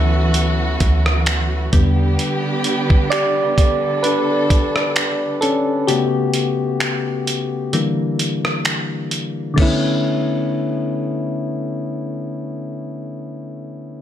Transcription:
0.00 0.77 D2 loud
0.00 1.70 E3 medium
0.00 1.75 E3 medium
0.00 1.75 F#3 soft
0.00 1.69 B3 medium
0.00 1.75 C#4 medium
0.00 1.70 F#4 medium
0.00 1.70 A4 medium
0.00 1.69 E5 loud
0.34 closed hi-hat medium
0.80 1.69 D2 loud
0.80 kick loud
0.80 closed hi-hat medium
1.06 cross-stick medium
1.26 finger snap loud
1.26 closed hi-hat medium
1.72 2.17 E2 loud
1.72 5.84 D3 medium
1.72 2.36 D3 medium
1.72 2.36 G3 medium
1.72 5.84 B3 medium
1.72 2.36 B3 medium
1.72 3.56 G4 medium
1.72 kick loud
1.72 closed hi-hat medium
2.19 closed hi-hat medium
2.64 closed hi-hat medium
2.90 kick medium
3.10 4.00 G4 medium
3.10 4.06 D5 loud
3.10 finger snap loud
3.10 closed hi-hat medium
3.58 5.86 A4 medium
3.58 kick loud
3.58 closed hi-hat medium
4.03 4.93 D4 medium
4.03 4.92 B4 medium
4.03 closed hi-hat medium
4.50 kick loud
4.50 closed hi-hat medium
4.76 cross-stick medium
4.96 finger snap loud
4.96 closed hi-hat medium
5.41 5.86 C#4 medium
5.41 5.85 A4 loud
5.41 closed hi-hat medium
5.87 7.69 C#3 medium
5.87 7.69 A3 medium
5.87 6.77 B3 medium
5.87 7.69 F#4 medium
5.87 6.76 G4 loud
5.87 closed hi-hat medium
6.34 closed hi-hat medium
6.80 finger snap loud
6.80 closed hi-hat medium
7.27 closed hi-hat medium
7.73 9.53 D3 medium
7.73 9.54 E3 medium
7.73 9.54 G3 medium
7.73 9.54 A#3 medium
7.73 closed hi-hat medium
8.19 closed hi-hat medium
8.45 cross-stick medium
8.65 finger snap loud
8.65 closed hi-hat medium
9.11 closed hi-hat medium
9.54 12.56 D3 medium
9.54 12.58 A3 medium
9.54 12.60 B3 medium
9.54 kick loud
9.54 crash medium
9.60 12.62 C#4 medium
9.60 12.64 E4 medium

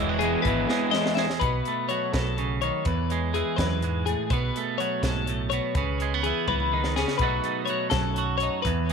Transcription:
0.00 0.34 E1 loud
0.00 1.42 E2 medium
0.00 0.22 E3 medium
0.00 0.21 G#3 medium
0.00 0.21 B3 loud
0.00 0.23 B3 medium
0.00 0.20 E4 loud
0.00 0.21 D#5 medium
0.09 1.42 F#4 medium
0.19 0.43 E3 medium
0.19 0.44 G#3 medium
0.19 0.45 B3 medium
0.19 0.45 E4 medium
0.19 0.42 G#4 medium
0.19 closed hi-hat medium
0.24 0.69 G#3 medium
0.42 0.64 G#1 medium
0.42 0.68 E3 medium
0.42 0.68 G#3 medium
0.42 0.67 E4 medium
0.42 0.92 B4 medium
0.42 kick medium
0.42 closed hi-hat medium
0.46 1.43 E3 medium
0.46 0.67 B3 medium
0.68 0.91 E3 medium
0.68 0.92 G#3 medium
0.68 1.17 G#3 medium
0.68 0.92 B3 medium
0.68 0.92 E4 medium
0.68 snare medium
0.91 1.24 E3 medium
0.91 1.25 G#3 medium
0.91 1.25 B3 medium
0.91 1.25 E4 medium
0.91 1.15 D#5 medium
0.91 snare medium
1.06 snare medium
1.15 1.42 G#3 medium
1.15 1.39 E5 medium
1.15 snare loud
1.30 snare medium
1.40 1.60 B1 medium
1.40 2.13 B2 medium
1.40 1.88 B4 medium
1.40 kick medium
1.40 closed hi-hat medium
1.65 2.85 A3 medium
1.65 closed hi-hat medium
1.89 2.84 F#3 medium
1.89 2.13 C#5 medium
1.89 closed hi-hat soft
2.13 2.69 B1 medium
2.13 2.38 B2 medium
2.13 2.61 A4 medium
2.13 kick medium
2.13 snare loud
2.13 closed hi-hat medium
2.38 2.62 C#3 medium
2.38 closed hi-hat soft
2.62 2.87 D#3 medium
2.62 2.86 C#5 medium
2.62 closed hi-hat medium
2.85 3.41 E2 medium
2.85 3.59 E2 medium
2.85 3.34 B4 medium
2.85 kick loud
2.85 closed hi-hat medium
3.10 4.32 G#3 soft
3.10 closed hi-hat medium
3.34 4.32 E3 medium
3.34 3.56 G#4 medium
3.34 closed hi-hat medium
3.56 4.14 E2 loud
3.56 4.06 B4 medium
3.56 kick medium
3.56 snare loud
3.56 closed hi-hat medium
3.61 3.83 F#2 medium
3.82 4.07 G#2 medium
3.82 closed hi-hat medium
4.06 4.32 A2 medium
4.06 4.31 G#4 medium
4.06 closed hi-hat medium
4.30 4.49 B1 medium
4.30 5.52 B2 medium
4.30 4.78 B4 medium
4.30 kick loud
4.30 closed hi-hat medium
4.56 5.74 A3 medium
4.56 closed hi-hat medium
4.78 5.74 F#3 medium
4.78 5.03 C#5 medium
4.78 closed hi-hat medium
5.03 5.58 B1 medium
5.03 5.28 G#2 medium
5.03 5.49 A4 medium
5.03 kick medium
5.03 snare loud
5.03 closed hi-hat medium
5.27 5.53 A2 medium
5.27 closed hi-hat medium
5.50 5.77 B2 medium
5.50 5.75 C#5 medium
5.50 closed hi-hat medium
5.75 6.30 C#2 medium
5.75 6.25 C#3 medium
5.75 6.23 B4 medium
5.75 kick loud
5.75 closed hi-hat medium
6.00 6.14 G#3 medium
6.00 closed hi-hat medium
6.14 7.22 B3 soft
6.23 6.48 E3 medium
6.23 6.48 G#4 medium
6.23 closed hi-hat medium
6.48 7.03 C#2 medium
6.48 6.73 E3 medium
6.48 6.96 B4 medium
6.48 kick medium
6.48 high tom medium
6.60 high tom medium
6.73 6.97 D#3 medium
6.84 snare medium
6.96 7.21 C#3 medium
6.96 7.17 G#4 medium
6.96 snare medium
7.08 snare medium
7.18 7.38 B1 medium
7.18 7.93 B2 medium
7.18 7.68 F#3 medium
7.18 7.65 B4 medium
7.18 kick medium
7.18 closed hi-hat medium
7.22 7.44 A3 medium
7.22 8.42 D#4 medium
7.22 8.17 F#4 medium
7.44 8.62 A3 medium
7.44 closed hi-hat medium
7.65 7.90 C#5 medium
7.65 closed hi-hat medium
7.69 8.63 F#3 medium
7.90 8.47 B1 medium
7.90 8.62 F#2 medium
7.90 8.37 A4 medium
7.90 kick medium
7.90 snare loud
7.90 closed hi-hat medium
8.16 8.63 F#4 medium
8.16 closed hi-hat medium
8.38 8.62 C#5 medium
8.38 closed hi-hat medium
8.43 8.69 D#4 medium
8.62 8.93 E2 medium
8.62 8.93 B4 medium
8.62 kick medium
8.62 closed hi-hat medium
8.66 8.93 E2 medium
8.90 closed hi-hat medium

